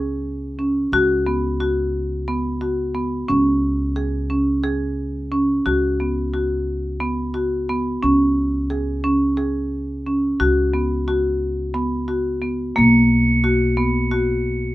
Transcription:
0.00 0.89 C#2 medium
0.00 0.26 G#4 medium
0.59 0.76 C#4 medium
0.92 3.25 C#2 medium
0.92 1.10 F#4 medium
1.27 1.44 B3 medium
1.60 1.95 F#4 medium
2.28 2.45 B3 medium
2.61 2.78 F#4 medium
2.95 3.12 B3 medium
3.28 5.62 C#2 medium
3.28 3.63 C#4 medium
3.96 4.14 G#4 medium
4.30 4.47 C#4 medium
4.63 4.98 G#4 medium
5.32 5.49 C#4 medium
5.66 7.99 C#2 medium
5.66 5.83 F#4 medium
6.00 6.17 B3 medium
6.34 6.68 F#4 medium
7.00 7.18 B3 medium
7.34 7.52 F#4 medium
7.69 7.86 B3 medium
8.03 10.36 C#2 medium
8.03 8.37 C#4 medium
8.70 8.88 G#4 medium
9.04 9.21 C#4 medium
9.37 9.72 G#4 medium
10.07 10.24 C#4 medium
10.40 12.73 C#2 medium
10.40 10.57 F#4 medium
10.74 10.91 B3 medium
11.08 11.42 F#4 medium
11.74 11.92 B3 medium
12.08 12.26 F#4 medium
12.42 12.59 B3 medium
12.76 14.75 B1 medium
12.76 13.11 A#3 medium
12.76 14.75 C#7 soft
13.44 13.61 F#4 medium
13.77 13.95 B3 medium
14.11 14.46 F#4 medium

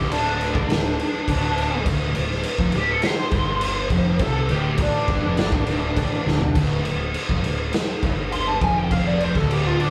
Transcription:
0.00 0.51 D1 medium
0.00 0.54 D2 loud
0.00 0.11 G4 medium
0.12 1.83 D4 loud
0.12 crash medium
0.41 crash medium
0.55 0.68 A1 loud
0.55 0.69 A2 loud
0.55 kick loud
0.69 0.97 D1 medium
0.69 0.93 D2 medium
0.69 snare loud
0.69 crash medium
1.00 crash medium
1.28 1.82 D1 medium
1.28 1.84 D2 loud
1.28 kick loud
1.28 crash medium
1.58 crash medium
1.86 2.14 D1 loud
1.86 2.14 D2 loud
1.86 kick loud
1.86 crash medium
2.15 2.43 D1 medium
2.15 2.39 D2 medium
2.15 crash medium
2.31 snare soft
2.43 crash medium
2.58 2.73 F1 loud
2.58 2.73 F2 loud
2.58 kick loud
2.72 3.01 D1 medium
2.72 2.98 D2 medium
2.72 2.91 G4 medium
2.72 crash medium
2.91 3.06 A4 loud
3.02 snare loud
3.02 crash medium
3.06 4.19 C5 loud
3.31 3.87 G1 loud
3.31 3.91 G2 loud
3.31 kick loud
3.31 crash medium
3.61 crash medium
3.90 4.18 F1 loud
3.90 4.20 F2 loud
3.90 kick loud
3.90 crash medium
4.19 4.47 C2 loud
4.19 4.49 C3 loud
4.19 kick loud
4.19 crash medium
4.23 4.51 A4 medium
4.49 4.77 D1 loud
4.49 4.79 D2 loud
4.49 4.79 G4 medium
4.49 crash medium
4.78 5.06 A1 medium
4.78 5.08 A2 loud
4.78 kick loud
4.78 crash medium
4.82 6.53 D4 loud
5.08 5.22 G1 medium
5.08 5.23 G2 loud
5.08 kick loud
5.08 crash medium
5.23 5.37 F1 loud
5.23 5.38 F2 loud
5.37 5.52 G1 loud
5.37 5.52 G2 loud
5.37 snare loud
5.37 crash medium
5.52 5.66 A1 loud
5.52 5.67 A2 loud
5.52 kick loud
5.67 5.95 D1 loud
5.67 5.96 D2 loud
5.67 crash medium
5.96 6.24 A1 medium
5.96 6.26 A2 loud
5.96 kick loud
5.96 crash medium
6.26 6.40 D1 loud
6.26 6.40 D2 loud
6.26 snare medium
6.41 6.55 C2 loud
6.41 6.55 C3 medium
6.41 floor tom loud
6.55 6.83 D1 loud
6.55 6.84 D2 loud
6.55 kick loud
6.55 crash medium
6.84 7.12 D1 medium
6.84 7.09 D2 medium
6.84 crash medium
7.14 crash medium
7.29 7.43 F1 medium
7.29 7.44 F2 loud
7.29 kick loud
7.43 7.71 D1 medium
7.43 7.68 D2 medium
7.43 crash medium
7.73 snare loud
7.73 crash medium
8.03 8.58 G1 loud
8.03 8.61 G2 loud
8.03 kick loud
8.03 crash medium
8.32 8.47 C6 loud
8.32 crash medium
8.47 8.61 A5 medium
8.61 9.31 F1 loud
8.61 9.35 F2 loud
8.61 8.77 G#5 medium
8.61 kick loud
8.61 crash medium
8.77 8.91 G5 loud
8.91 9.07 F5 medium
8.91 kick loud
8.91 crash medium
9.07 9.21 D5 medium
9.20 9.37 C5 medium
9.20 crash medium
9.35 9.90 D1 medium
9.35 9.90 D2 loud
9.35 9.52 A4 loud
9.35 kick loud
9.35 snare soft
9.51 9.66 G4 medium
9.51 crash medium
9.66 9.80 F4 medium
9.80 9.90 D4 medium
9.80 crash medium

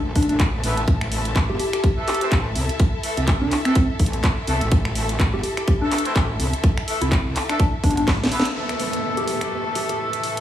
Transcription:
0.00 0.14 A1 medium
0.00 10.40 E4 medium
0.00 10.40 A4 medium
0.00 10.40 E5 medium
0.00 10.40 A5 medium
0.16 0.27 A1 medium
0.16 0.24 D4 medium
0.16 kick medium
0.16 open hi-hat loud
0.22 closed hi-hat medium
0.29 0.62 A1 medium
0.29 0.36 D4 medium
0.29 closed hi-hat soft
0.40 kick loud
0.40 clap loud
0.40 closed hi-hat medium
0.63 0.86 A1 medium
0.63 0.78 E3 medium
0.63 0.78 A3 medium
0.63 0.78 B3 medium
0.63 0.78 E4 medium
0.63 0.78 B4 loud
0.63 open hi-hat medium
0.77 closed hi-hat soft
0.88 1.34 A1 loud
0.88 kick loud
0.88 closed hi-hat medium
1.01 finger snap medium
1.12 open hi-hat loud
1.25 closed hi-hat soft
1.36 1.47 A1 medium
1.36 kick loud
1.36 clap loud
1.36 closed hi-hat medium
1.49 1.58 G1 loud
1.49 1.56 G4 medium
1.59 1.69 G4 medium
1.59 open hi-hat medium
1.73 1.88 G4 medium
1.73 finger snap medium
1.73 closed hi-hat soft
1.84 kick loud
1.84 closed hi-hat medium
1.97 2.17 E3 medium
1.97 2.17 A3 medium
1.97 2.17 E4 medium
1.97 2.17 A4 medium
2.08 2.17 G4 medium
2.08 clap medium
2.08 open hi-hat loud
2.14 closed hi-hat medium
2.21 2.42 E3 medium
2.21 2.42 A3 medium
2.21 2.42 C4 medium
2.21 2.42 E4 medium
2.21 2.28 G4 medium
2.21 2.42 C5 loud
2.21 closed hi-hat medium
2.32 2.54 A1 medium
2.32 kick loud
2.32 clap loud
2.32 closed hi-hat medium
2.56 2.67 C2 loud
2.56 open hi-hat medium
2.69 closed hi-hat medium
2.80 kick loud
2.80 closed hi-hat medium
3.03 3.18 E3 medium
3.03 3.18 A3 medium
3.03 3.18 E4 medium
3.03 3.18 A4 medium
3.03 open hi-hat loud
3.17 3.50 C2 loud
3.17 closed hi-hat medium
3.27 kick loud
3.27 clap loud
3.27 closed hi-hat medium
3.41 3.56 D4 medium
3.51 clap medium
3.51 open hi-hat medium
3.65 3.77 E3 loud
3.65 3.77 A3 medium
3.65 3.72 C4 medium
3.65 3.77 E4 medium
3.65 3.77 A4 loud
3.65 finger snap medium
3.65 closed hi-hat medium
3.75 3.84 C4 medium
3.75 kick loud
3.75 closed hi-hat medium
3.99 4.22 A1 loud
3.99 kick medium
3.99 open hi-hat loud
4.06 closed hi-hat medium
4.13 closed hi-hat medium
4.24 kick loud
4.24 clap loud
4.24 closed hi-hat medium
4.47 4.59 C2 loud
4.47 4.62 E3 medium
4.47 4.62 A3 medium
4.47 4.62 E4 medium
4.47 4.62 A4 loud
4.47 open hi-hat medium
4.61 4.70 A1 loud
4.61 closed hi-hat medium
4.72 5.18 A1 medium
4.72 kick loud
4.72 closed hi-hat medium
4.85 finger snap medium
4.95 open hi-hat loud
5.09 closed hi-hat medium
5.20 5.31 A1 medium
5.20 kick loud
5.20 clap loud
5.20 closed hi-hat medium
5.33 5.42 G1 loud
5.33 5.40 G4 medium
5.43 5.52 G4 medium
5.43 open hi-hat medium
5.57 5.72 G4 medium
5.57 finger snap medium
5.57 closed hi-hat medium
5.68 kick loud
5.68 closed hi-hat medium
5.81 6.01 E3 medium
5.81 6.01 A3 medium
5.81 5.88 D4 medium
5.81 6.01 E4 medium
5.81 6.01 A4 loud
5.92 6.01 D4 medium
5.92 clap medium
5.92 open hi-hat loud
5.98 closed hi-hat medium
6.05 6.26 E3 medium
6.05 6.26 A3 medium
6.05 6.26 C4 medium
6.05 6.26 E4 medium
6.05 6.26 C5 loud
6.05 closed hi-hat medium
6.16 6.38 A1 loud
6.16 kick loud
6.16 clap loud
6.16 closed hi-hat medium
6.39 6.51 C2 medium
6.39 open hi-hat medium
6.53 closed hi-hat medium
6.64 kick loud
6.64 closed hi-hat medium
6.78 finger snap medium
6.88 7.02 E3 medium
6.88 7.02 A3 medium
6.88 7.02 E4 medium
6.88 7.02 A4 medium
6.88 open hi-hat loud
7.01 7.34 C2 loud
7.01 7.08 E4 medium
7.01 closed hi-hat medium
7.12 7.20 E4 medium
7.12 kick loud
7.12 clap loud
7.12 closed hi-hat medium
7.36 clap medium
7.36 open hi-hat medium
7.49 7.61 E3 loud
7.49 7.61 A3 medium
7.49 7.56 D4 medium
7.49 7.61 E4 medium
7.49 7.61 A4 loud
7.49 finger snap medium
7.49 closed hi-hat medium
7.60 7.69 D4 medium
7.60 kick loud
7.60 closed hi-hat medium
7.84 8.06 G1 medium
7.84 7.93 D4 medium
7.84 kick medium
7.84 open hi-hat loud
7.91 closed hi-hat medium
7.97 8.04 D4 medium
7.97 closed hi-hat medium
8.08 8.30 A1 medium
8.08 kick loud
8.08 snare medium
8.08 clap loud
8.08 closed hi-hat medium
8.24 snare medium
8.32 8.46 E3 medium
8.32 8.46 A3 medium
8.32 8.46 B3 medium
8.32 8.46 E4 medium
8.32 8.46 B4 loud
8.32 open hi-hat medium
8.40 snare loud
8.45 closed hi-hat medium
8.55 10.40 E3 medium
8.55 10.40 A3 medium
8.55 10.40 E4 medium
8.55 10.40 A4 medium
8.55 downlifter medium
8.69 finger snap medium
8.69 closed hi-hat medium
8.80 open hi-hat medium
8.93 closed hi-hat medium
9.17 9.24 G4 medium
9.17 closed hi-hat soft
9.28 9.36 G4 medium
9.28 open hi-hat medium
9.41 9.56 G4 medium
9.41 finger snap medium
9.41 closed hi-hat medium
9.75 9.85 G4 medium
9.75 open hi-hat loud
9.89 9.96 G4 medium
9.89 closed hi-hat medium
10.13 closed hi-hat medium
10.23 open hi-hat medium

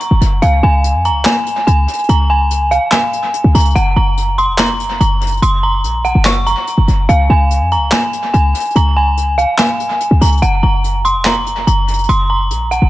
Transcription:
0.00 0.38 A#5 medium
0.00 closed hi-hat medium
0.11 0.21 F#1 loud
0.21 0.41 F#1 loud
0.21 closed hi-hat medium
0.42 0.62 C#2 loud
0.42 0.61 F5 medium
0.42 closed hi-hat medium
0.63 0.96 C#2 loud
0.63 1.02 G#5 medium
0.84 closed hi-hat medium
0.94 1.11 F2 loud
1.05 1.23 A#5 medium
1.05 closed hi-hat medium
1.10 1.25 C#2 medium
1.25 1.65 G#5 medium
1.25 snare loud
1.25 clap medium
1.46 closed hi-hat medium
1.67 1.87 C#2 loud
1.67 2.06 G#5 medium
1.67 closed hi-hat medium
1.88 closed hi-hat medium
1.93 closed hi-hat medium
1.98 closed hi-hat medium
2.04 closed hi-hat soft
2.09 2.79 C#2 loud
2.09 2.28 A#5 loud
2.09 closed hi-hat medium
2.30 2.69 G#5 medium
2.51 closed hi-hat medium
2.71 2.90 F5 medium
2.71 closed hi-hat medium
2.91 3.51 G#5 medium
2.91 snare loud
2.91 clap medium
3.13 closed hi-hat medium
3.34 closed hi-hat medium
3.44 3.54 C#2 loud
3.55 3.75 C#2 loud
3.55 3.73 A#5 medium
3.55 closed hi-hat medium
3.55 open hi-hat medium
3.60 closed hi-hat medium
3.65 closed hi-hat medium
3.70 closed hi-hat soft
3.75 3.96 F#1 loud
3.75 3.94 F#5 loud
3.75 closed hi-hat medium
3.96 4.50 F#1 loud
3.96 4.36 A#5 medium
4.17 closed hi-hat medium
4.38 4.57 C6 medium
4.38 closed hi-hat medium
4.48 4.76 F1 loud
4.58 4.98 A#5 medium
4.58 snare loud
4.58 clap medium
4.74 4.99 F#1 loud
4.80 closed hi-hat medium
5.00 5.41 F#1 loud
5.00 5.40 A#5 medium
5.00 closed hi-hat medium
5.21 closed hi-hat medium
5.27 closed hi-hat medium
5.32 closed hi-hat medium
5.37 closed hi-hat soft
5.42 5.85 F#1 loud
5.42 5.61 C6 loud
5.42 closed hi-hat medium
5.63 6.02 A#5 medium
5.84 6.14 A#1 loud
5.84 closed hi-hat medium
6.05 6.23 F#5 medium
6.05 closed hi-hat medium
6.15 6.55 F#1 loud
6.25 6.44 C#6 medium
6.25 snare loud
6.25 clap medium
6.46 7.05 A#5 medium
6.46 closed hi-hat medium
6.67 closed hi-hat medium
6.78 6.88 F#1 loud
6.88 7.08 F#1 loud
6.88 closed hi-hat medium
7.09 7.29 C#2 loud
7.09 7.27 F5 medium
7.09 closed hi-hat medium
7.30 7.62 C#2 loud
7.30 7.69 G#5 medium
7.51 closed hi-hat medium
7.61 7.78 F2 loud
7.71 7.90 A#5 medium
7.71 closed hi-hat medium
7.77 7.91 C#2 loud
7.91 8.31 G#5 medium
7.91 snare loud
7.91 clap medium
8.13 closed hi-hat medium
8.34 8.54 C#2 loud
8.34 8.73 G#5 medium
8.34 closed hi-hat medium
8.55 closed hi-hat medium
8.60 closed hi-hat medium
8.65 closed hi-hat medium
8.70 closed hi-hat soft
8.76 9.46 C#2 loud
8.76 8.94 A#5 loud
8.76 closed hi-hat medium
8.96 9.36 G#5 medium
9.17 closed hi-hat medium
9.38 9.56 F5 medium
9.38 closed hi-hat medium
9.58 10.18 G#5 medium
9.58 snare loud
9.58 clap medium
9.80 closed hi-hat medium
10.01 closed hi-hat medium
10.11 10.21 C#2 loud
10.21 10.41 C#2 loud
10.21 10.40 A#5 medium
10.21 closed hi-hat medium
10.21 open hi-hat medium
10.27 closed hi-hat medium
10.32 closed hi-hat medium
10.37 closed hi-hat soft
10.42 10.62 F#1 loud
10.42 10.61 F#5 loud
10.42 closed hi-hat medium
10.63 11.17 F#1 loud
10.63 11.02 A#5 medium
10.84 closed hi-hat medium
11.05 11.23 C6 medium
11.05 closed hi-hat medium
11.15 11.43 F1 loud
11.25 11.65 A#5 medium
11.25 snare loud
11.25 clap medium
11.41 11.66 F#1 loud
11.46 closed hi-hat medium
11.67 12.07 F#1 loud
11.67 12.06 A#5 medium
11.67 closed hi-hat medium
11.88 closed hi-hat medium
11.93 closed hi-hat medium
11.98 closed hi-hat medium
12.04 closed hi-hat soft
12.09 12.52 F#1 loud
12.09 12.27 C6 loud
12.09 closed hi-hat medium
12.30 12.69 A#5 medium
12.51 12.80 A#1 loud
12.51 closed hi-hat medium
12.71 12.90 F#5 medium
12.71 closed hi-hat medium
12.82 12.90 F#1 loud

